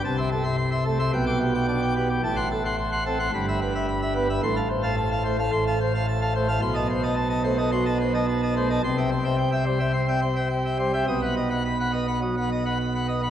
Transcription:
<<
  \new Staff \with { instrumentName = "Pipe organ" } { \time 4/4 \key b \phrygian \tempo 4 = 109 a''16 <e'' c'''>16 a'16 <e'' c'''>16 c'''16 <e'' c'''>16 a'16 <e'' c'''>16 g''16 <g'' d'''>16 g'16 <g'' d'''>16 d'''16 <g'' d'''>16 g'16 <g'' d'''>16 | a''16 <fis'' c'''>16 a'16 <fis'' c'''>16 c'''16 <fis'' c'''>16 a'16 <fis'' c'''>16 b''16 <e'' b''>16 b'16 <e'' b''>16 b''16 <e'' b''>16 b'16 <e'' b''>16 | c'''16 <f'' a''>16 c''16 <f'' a''>16 a''16 <f'' a''>16 c''16 <f'' a''>16 c'''16 <f'' a''>16 c''16 <f'' a''>16 a''16 <f'' a''>16 c''16 <f'' a''>16 | c'''16 <dis'' a''>16 c''16 <dis'' a''>16 a''16 <dis'' a''>16 c''16 <dis'' a''>16 c'''16 <dis'' a''>16 c''16 <dis'' a''>16 a''16 <dis'' a''>16 c''16 <dis'' a''>16 |
c'''16 <e'' g''>16 c''16 <e'' g''>16 g''16 <e'' g''>16 c''16 <e'' g''>16 c'''16 <e'' g''>16 c''16 <e'' g''>16 g''16 <e'' g''>16 c''16 <e'' g''>16 | dis'''16 <fis'' b''>16 dis''16 <fis'' b''>16 b''16 <fis'' b''>16 dis''16 <fis'' b''>16 dis'''16 <fis'' b''>16 dis''16 <fis'' b''>16 b''16 <fis'' b''>16 dis''16 <fis'' b''>16 | }
  \new Staff \with { instrumentName = "Pipe organ" } { \clef bass \time 4/4 \key b \phrygian << { c4. a16 r16 b,4 d'16 r16 b16 r16 | a,4. c'16 r16 g,4. b16 r16 | a,4. a16 r16 a,4. a16 r16 | b,4. a16 r16 fis16 r4 r16 a16 r16 |
c4. g16 r16 c'16 r4 r16 g16 r16 | b,4. b16 r16 fis16 r4 r16 b16 r16 | } \\ { c,2 b,,2 | a,,2 g,,2 | a,,2 a,,2 | b,,1 |
c,1 | b,,1 | } >> }
>>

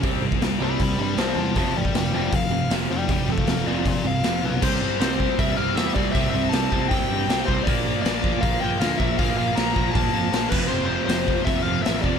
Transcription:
<<
  \new Staff \with { instrumentName = "Lead electric guitar" } { \time 4/4 \key c \major \tempo 4 = 158 << { r4. <d'' b''>8 <d'' b''>8 <d'' b''>8 <c'' a''>8 <c'' a''>8 | <c'' a''>8 <d'' g''>8 <d'' g''>8 <d'' g''>8 f''4 r8 <d'' g''>8 | <d'' g''>8 <a' f''>8 <a' f''>8 <f' d''>8 <f' d''>8 f''4. | r1 |
r1 | r1 | r1 | r1 | } \\ { r1 | r1 | r2. r8 b'8 | c''4 c''4 e''8 f''8 e''8 d''8 |
e''8 e''8 a''4 g''4. c''8 | d''4 d''4 f''8 g''8 f''8 e''8 | f''8 f''8 bes''4 a''4. b'8 | c''8 c''8 c''4 e''8 f''8 e''8 d''8 | } >> }
  \new Staff \with { instrumentName = "Distorted electric guitar" } { \clef bass \time 4/4 \key c \major <c g c'>1 | <f, c f>1 | <f, c f>1 | <c g c'>1 |
<c g c'>1 | <bes, f bes>1 | <bes, f bes>2.~ <bes, f bes>8 <f, c f>8~ | <f, c f>2.~ <f, c f>8 <f, c f>8 | }
  \new Staff \with { instrumentName = "Distorted electric guitar" } { \clef bass \time 4/4 \key c \major <c g c'>8 <c g>8 <c g>8 <c g c'>8 <c g>8 <c g>8 <c g c'>8 <c g>8 | <f, c f>8 <f, c>8 <f, c>8 <f, c f>8 <f, c>8 <f, c>8 <f, c f>8 <f, c>8 | <f, c>8 <f, c>8 <f, c>8 <f, c f>8 <f, c>8 <f, c>8 <f, c f>8 <f, c>8 | <c g c'>8 <c g c'>8 <c g c'>8 <c g c'>8 <c g c'>8 <c g c'>8 <c g c'>8 <c g c'>8 |
<c g c'>8 <c g c'>8 <c g c'>8 <c g c'>8 <c g c'>8 <c g c'>8 <c g c'>8 <c g c'>8 | <bes, f bes>8 <bes, f bes>8 <bes, f bes>8 <bes, f bes>8 <bes, f bes>8 <bes, f bes>8 <bes, f bes>8 <bes, f bes>8 | <bes, f bes>8 <bes, f bes>8 <bes, f bes>8 <bes, f bes>8 <bes, f bes>8 <bes, f bes>8 <bes, f bes>8 <f, c f>8 | <f, c f>8 <f, c f>8 <f, c f>8 <f, c f>8 <f, c f>8 <f, c f>8 <f, c f>8 <f, c f>8 | }
  \new Staff \with { instrumentName = "Overdriven electric guitar" } { \clef bass \time 4/4 \key c \major <c g c'>8 <c g>8 <c g>8 <c g c'>8 <c g>8 <c g>8 <c g c'>8 <c g>8 | <f, c f>8 <f, c>8 <f, c>8 <f, c f>8 <f, c>8 <f, c>8 <f, c f>8 <f, c>8 | <f, c>8 <f, c>8 <f, c>8 <f, c f>8 <f, c>8 <f, c>8 <f, c f>8 <f, c>8 | <c g c'>8 <c g c'>8 <c g c'>8 <c g c'>8 <c g c'>8 <c g c'>8 <c g c'>8 <c g c'>8 |
<c g c'>8 <c g c'>8 <c g c'>8 <c g c'>8 <c g c'>8 <c g c'>8 <c g c'>8 <c g c'>8 | <bes, f bes>8 <bes, f bes>8 <bes, f bes>8 <bes, f bes>8 <bes, f bes>8 <bes, f bes>8 <bes, f bes>8 <bes, f bes>8 | <bes, f bes>8 <bes, f bes>8 <bes, f bes>8 <bes, f bes>8 <bes, f bes>8 <bes, f bes>8 <bes, f bes>8 <f, c f>8 | <f, c f>8 <f, c f>8 <f, c f>8 <f, c f>8 <f, c f>8 <f, c f>8 <f, c f>8 <f, c f>8 | }
  \new Staff \with { instrumentName = "Picked electric bass" } { \clef bass \time 4/4 \key c \major c,8 c,8 c,8 c,8 c,8 g,8 c,8 e,8 | f,,8 a,,8 f,,8 f,,8 f,,4 f,,8 f,,8 | f,,8 f,,8 f,,8 f,,8 f,,8 c,8 f,,8 b,,8 | c,4 c,4 c,8 c,8 e,8 c,8 |
c,8 c,8 c,8 c,8 c,8 g,8 c,8 c,8 | bes,,4 bes,,4 bes,,8 bes,,8 d,8 bes,,8 | bes,,8 bes,,8 bes,,8 bes,,8 bes,,8 f,8 bes,,8 f,,8 | f,,4 f,,4 f,,8 f,,8 a,,8 f,,8 | }
  \new DrumStaff \with { instrumentName = "Drums" } \drummode { \time 4/4 <hho bd>8. bd16 <hho sn>4 <hho bd>4 <hho sn>4 | <hho bd>8. bd16 <hho sn>4 <hho bd>4 <hho sn>4 | <hho bd>8. bd16 <hho sn>4 <hho bd>4 <hho sn>4 | <cymc bd>4 <hho sn>8 bd8 <hho bd>4 <hho sn>8 bd8 |
<hho bd>4 <hho sn>8 bd8 <hho bd>4 <hho sn>8 bd8 | <hho bd>4 <hho sn>8 bd8 <hho bd>4 <hho sn>8 bd8 | <hho bd>4 <hho sn>8 bd8 <hho bd>4 <hho sn>8 <cymc bd>8 | r4 <hho sn>8 bd8 <hho bd>4 <hho sn>8 bd8 | }
>>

